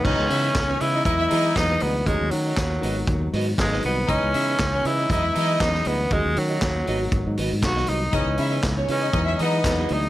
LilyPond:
<<
  \new Staff \with { instrumentName = "Clean electric guitar" } { \time 4/4 \key cis \minor \tempo 4 = 119 <e' b' dis''>8 r16 <e' b' dis''>16 r8 <e' b' dis''>16 r8. <gis' b' dis''>16 r8 <gis' b' dis''>16 <gis' b' dis''>16 r16 | <fis' cis'' dis''>8 r16 <fis' cis'' dis''>16 r8 <fis' b' dis''>16 r8. <fis' b' dis''>16 r8 <fis' b' dis''>16 <fis' b' dis''>16 r16 | <e' b' dis''>8 r16 <e' b' dis''>16 r8 <e' b' dis''>16 r8. <e' gis' dis''>16 r8 <e' gis' dis''>16 <e' gis' dis''>16 r16 | <fis' cis'' dis''>8 r16 <fis' cis'' dis''>16 r8 <fis' b' dis''>16 r8. <fis' b' dis''>16 r8 <fis' b' dis''>16 <fis' b' dis''>16 r16 |
<e' b' dis''>8 r16 <e' b' dis''>16 r8 <e' b' dis''>16 r8. <e' gis' dis''>16 r8 <e' gis' dis''>16 <e' gis' dis''>16 r16 | }
  \new Staff \with { instrumentName = "Violin section" } { \time 4/4 \key cis \minor <dis' dis''>16 r16 <e' e''>16 r8 <cis' cis''>16 r16 <dis' dis''>16 <dis' dis''>16 <e' e''>16 <dis' dis''>4 r8 | r1 | <dis' dis''>16 r16 <e' e''>16 r8 <cis' cis''>16 r16 <dis' dis''>16 <dis' dis''>16 <e' e''>16 <dis' dis''>4 r8 | r1 |
<dis' dis''>16 r16 <e' e''>16 r8 <cis' cis''>16 r16 <dis' dis''>16 <dis' dis''>16 <e' e''>16 <dis' dis''>4 r8 | }
  \new Staff \with { instrumentName = "Tenor saxophone" } { \time 4/4 \key cis \minor cis'4. e'8 e'4 dis'8 b8 | gis8 fis2 r8 gis8 b8 | cis'4. e'8 e'4 dis'8 b8 | gis8 fis2 r8 fis'8 dis'8 |
cis'4 r8 cis'4 b4 dis'8 | }
  \new Staff \with { instrumentName = "Tine electric piano" } { \clef bass \time 4/4 \key cis \minor <cis e gis b dis'>4. r8 <e fis gis b dis''>4 <e fis gis b dis'>4 | <dis fis a cis' dis'>4. <dis fis gis b dis'>4. <dis fis gis b dis'>4 | <cis e gis b dis'>4. r8 <e fis gis b dis''>4 <e fis gis b cis'>4 | <dis fis a cis' dis'>4. <dis fis gis b dis'>4. <dis fis gis b dis'>4 |
<cis e gis b dis'>4. r8 <e fis gis b dis'>4 <e fis gis b dis'>4 | }
  \new Staff \with { instrumentName = "Fingered electric bass" } { \clef bass \time 4/4 \key cis \minor cis,16 cis,16 cis8 cis,8 cis8 e,8 e8 e,8 d,8 | dis,16 dis,16 dis8 dis,8 gis,,8 dis,8 gis,8 gis,,8 bis,,8 | cis,16 cis,16 cis8 cis,8 cis8 e,8 e8 e,8 d,8 | dis,16 dis,16 dis8 dis,8 gis,,8 gis,,16 gis,16 gis,,16 gis,16 b,,8 bis,,8 |
cis,16 cis,16 cis8 cis,8 cis8 e,8 e8 e,8 d,8 | }
  \new DrumStaff \with { instrumentName = "Drums" } \drummode { \time 4/4 <cymc bd>8 hho8 <hc hh bd sn>8 hho8 <hh bd>8 hho8 <hc hh bd sn>8 hho8 | <hh bd>8 hho8 <hc hh bd sn>8 hho8 <hh bd>8 hho8 <hc hh bd sn>16 sn16 hho8 | <hh bd>8 hho8 <hc hh bd sn>8 hho8 <hh bd>8 hho8 <hc hh bd sn>16 sn16 hho8 | <hh bd>8 hho8 <hc hh bd sn>8 hho8 <hh bd>8 hho8 <hc hh bd sn>16 sn16 hho8 |
<hh bd>8 hho8 <hc hh bd sn>8 hho8 <hh bd>8 hho8 <hc hh bd sn>8 hho8 | }
>>